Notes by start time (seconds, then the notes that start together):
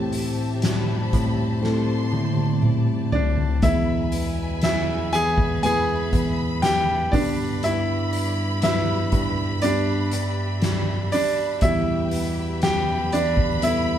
Already playing: A2 E3 G3 A3 C4 E4 G4 C5 E5 A5
0.12 C4, hi-hat pedal, open hi-hat
0.57 A#5
0.62 G3 B5, snare, hi-hat pedal, open hi-hat
1.12 A2 C4, kick, hi-hat pedal, open hi-hat
1.61 A3 C4 E4 A4 D5 C6, snare
2.12 A2 C4, high tom
2.37 high tom
2.62 E4, mid tom
3.12 C4 D4 D5, floor tom
3.37 floor tom
3.62 E2 B2 G#3 B3 E4 G#4 B4 E5 G#5 B5, kick, hi-hat pedal, open hi-hat
4.12 B3, hi-hat pedal, open hi-hat
4.62 G#3 E5, snare, hi-hat pedal, open hi-hat
4.66 E4
5.12 E2 B3 G#4 G#5, hi-hat pedal, open hi-hat
5.38 kick
5.63 G#3 B3 E4 G#4 B4 G#5 B5, hi-hat pedal, open hi-hat
6.13 E2 B3, kick, hi-hat pedal, open hi-hat
6.62 E4 G4 G5, snare, hi-hat pedal, open hi-hat
7.11 G2 D3 G3 B3 D4 G4 D5 B5, kick, hi-hat pedal, open hi-hat
7.63 G2 E4 E5, hi-hat pedal, open hi-hat
8.12 D4, hi-hat pedal, open hi-hat
8.62 B3 E4 E5, snare, hi-hat pedal, open hi-hat
9.12 G2 D4 E5, kick, hi-hat pedal, open hi-hat
9.62 G3 B3 D4 G4 D5, hi-hat pedal, open hi-hat
10.11 G2 D4, hi-hat pedal, open hi-hat
10.61 G4, snare, hi-hat pedal, open hi-hat
11.12 D4 D5, hi-hat pedal, open hi-hat
11.60 E2 B2 G3 B3 E4 G4 B4 E5 G5 B5, kick, hi-hat pedal, open hi-hat
11.65 E4
12.11 B3, hi-hat pedal, open hi-hat
12.62 G3 G4 G5 B5, snare, hi-hat pedal, open hi-hat
13.12 E2 B3 D4 D5, hi-hat pedal, open hi-hat
13.37 kick
13.62 G3 B3 E4 A4 E5, hi-hat pedal, open hi-hat